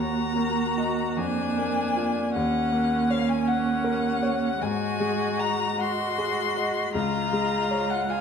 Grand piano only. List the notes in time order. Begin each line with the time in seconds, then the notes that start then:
Already playing: D#2
0.36 A#3
0.78 F#4 D#5
1.16 F2
1.57 A#3
1.97 F4 D5
2.36 D#2
2.72 A#3
3.10 C#5
3.48 F#5
3.84 A#4
4.22 C#5
4.62 G#2
5.00 G#3
5.39 D#5
5.78 F#5
6.18 G#4
6.57 D#5
6.95 C#2
7.33 G#3
7.71 C#5
8.10 F5